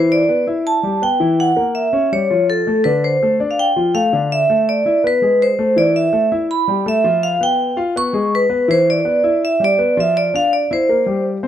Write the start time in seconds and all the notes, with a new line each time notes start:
Already playing: E3 E4 C5
0.12 D5
0.29 B3 B4
0.47 E4 E5
0.67 A5
0.83 G3 G4
1.02 B3 B4 G5
1.20 E3 E4
1.40 F#5
1.56 A#3 A#4
1.75 E5
1.93 C#4 C#5
2.12 G3 G4 C#5
2.31 F3 F4
2.50 A4
2.67 A3 A4
2.84 D3 D4 B4
3.04 C5
3.22 A3 A4
3.40 D4 D5
3.51 F5
3.59 G5
3.76 F3 F4
3.94 A3 A4 F5
4.13 D3 D4
4.32 E5
4.50 A3 A4
4.69 D5
4.86 E4 E5
5.04 B3 B4
5.22 G#3 G#4
5.42 C5
5.59 A3 A4
5.76 E3 E4 D5
5.96 E5
6.13 A3 A4
6.32 E4 E5
6.51 B5
6.68 G3 G4
6.86 A3 A4 E5
7.04 F3 F4
7.23 F5
7.41 B3 B4 G5
7.77 F4 F5
7.96 B3 B4 C#6
8.13 G#3 G#4
8.35 B4
8.49 B3 B4
8.68 E3 E4 C5
8.90 D5
9.05 B3 B4
9.24 E4 E5
9.45 E5
9.60 G3 G4
9.64 D5
9.79 B3 B4
9.97 F3 F4 E5
10.17 D5
10.34 D4 D5 F5
10.53 D5
10.71 E4 C5 E5
10.89 A#3 A#4
11.06 G3 G4
11.43 C4 C5